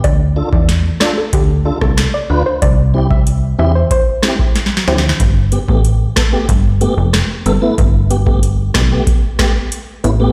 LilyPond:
<<
  \new Staff \with { instrumentName = "Synth pluck" } { \time 4/4 \key g \mixolydian \tempo 4 = 93 d''8 r16 d''16 r8 d''16 a'16 g'16 r8 a'16 r16 d''16 r16 c''16 | d''8 r16 e''16 r8 e''16 c''16 c''8. r8. c''16 r16 | r1 | r1 | }
  \new Staff \with { instrumentName = "Tonewheel organ" } { \time 4/4 \key g \mixolydian r8 <d' f' a'>16 r8. <d' f' a'>16 r8. <d' f' a'>16 r8. <d' f' b'>16 r16 | r8 <c' e' g'>16 r8. <c' e' g'>16 r8. <c' e' g'>16 r8. <c' e' g'>16 r16 | r8 <b g'>16 <a b g'>16 r8 <b a'>16 <a b g'>16 r8 <a b g'>16 r8. <b a'>16 <a b e'>16 | r8 <b g'>16 <a b g'>16 r8 <b g'>16 <a b g'>16 r8 <a b g'>16 r8. <b e'>16 <a b g'>16 | }
  \new Staff \with { instrumentName = "Analog synth bass" } { \clef bass \time 4/4 \key g \mixolydian d,8. e,8. r8 d,8. c,8 r16 d,16 r16 | c,4. e,8 r4. d,8 | g,,8. a,,8. r8 g,,8. f,,8 r16 g,,16 r16 | g,,4. b,,8 r4. a,,8 | }
  \new DrumStaff \with { instrumentName = "Drums" } \drummode { \time 4/4 <hh bd>8. bd16 <hh sn>8 <ss sn>8 <hh bd>8. <bd ss>16 <hh ss sn>4 | <hh bd>8. bd16 hh4 <hh bd>8 <ss sn>16 bd16 \tuplet 3/2 { <hh sn>16 sn16 sn16 sn16 sn16 sn16 } | <hh bd>8 hh16 bd16 hh8 <hh bd ss sn>8 <hh bd>8 hh8 <hh ss sn>8 hh8 | <hh bd>8 hh16 bd16 hh8 <hh bd ss sn>8 <hh bd>8 <hh bd ss sn>8 hh8 hh8 | }
>>